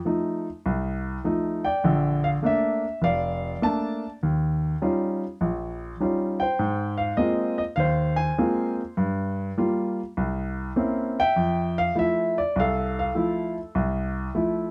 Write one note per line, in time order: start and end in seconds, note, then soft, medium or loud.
0.05 0.46 F3 soft
0.05 0.46 A3 soft
0.05 0.47 D#4 soft
0.66 1.16 C2 medium
1.24 1.65 F3 soft
1.24 1.66 A3 soft
1.24 1.66 D#4 medium
1.65 2.79 D5 medium
1.65 2.19 G5 medium
1.84 2.35 A#1 medium
1.84 2.35 D3 medium
2.24 2.29 F5 medium
2.43 2.84 A3 medium
2.43 2.84 A#3 soft
2.43 2.85 D4 medium
2.43 3.00 E5 medium
3.02 3.53 F1 medium
3.02 4.18 D5 medium
3.02 3.58 F5 medium
3.62 4.03 A3 soft
3.62 4.03 A#3 soft
3.62 4.03 D4 medium
3.62 4.08 A5 medium
4.23 4.74 D#2 medium
4.82 5.23 G3 soft
4.82 5.23 C#4 soft
4.82 5.23 D#4 soft
4.82 5.23 F4 medium
5.41 5.92 A#1 medium
6.00 6.42 G3 soft
6.00 6.42 C#4 soft
6.00 6.42 D#4 soft
6.00 6.42 F4 soft
6.40 7.56 C5 medium
6.40 7.01 G5 medium
6.59 7.11 G#2 medium
6.98 7.17 F5 medium
7.17 7.60 G#3 soft
7.17 7.60 A#3 soft
7.17 7.60 C4 soft
7.17 7.60 F4 medium
7.17 7.55 D#5 medium
7.58 7.63 D#5 medium
7.76 8.30 D#2 medium
7.76 8.94 C5 medium
7.76 8.18 F5 medium
8.16 8.73 G#5 medium
8.38 8.80 G#3 soft
8.38 8.80 A#3 soft
8.38 8.80 C4 soft
8.38 8.80 F4 medium
8.97 9.49 G2 medium
9.58 9.99 G3 soft
9.58 9.99 A#3 soft
9.58 10.00 F4 medium
10.17 10.69 C2 medium
10.76 11.18 A#3 soft
10.76 11.18 C4 soft
10.76 11.19 C#4 soft
10.76 11.19 E4 medium
11.20 11.97 E5 medium
11.20 11.80 G5 medium
11.36 11.88 F2 medium
11.78 11.96 F5 medium
11.95 12.38 F3 medium
11.95 12.38 A3 soft
11.95 12.38 E4 medium
11.95 12.38 E5 medium
12.38 12.58 D5 medium
12.56 13.08 C2 medium
12.56 12.98 F5 medium
12.60 13.73 A4 medium
12.99 13.53 F5 medium
13.15 13.57 F3 soft
13.15 13.57 A3 soft
13.15 13.58 E4 medium
13.75 14.27 C2 medium
14.35 14.71 F3 soft
14.35 14.71 A3 soft
14.35 14.71 E4 medium